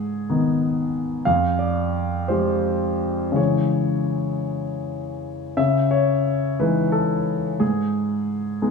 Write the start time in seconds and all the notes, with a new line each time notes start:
Already playing: G#2 G#4
0.29 D#3 B3 D#4
1.25 F2 F5
1.59 D5
2.28 F3 G#3 G4 C5
3.32 C#3 E3 G#3
3.36 G#4 C#5
5.57 C#3 E5
5.91 C#5
6.60 E3 G#3 D#4 B4
6.92 A4
7.60 G#2 G#4
8.62 G#3 B3 D#4